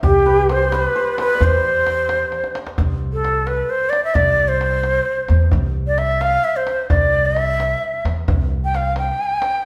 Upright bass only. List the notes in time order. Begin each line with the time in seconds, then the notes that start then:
0.03 C2
1.40 E2
2.78 C2
4.15 C2
5.29 E2
5.53 C2
6.90 C2
8.05 E2
8.28 C2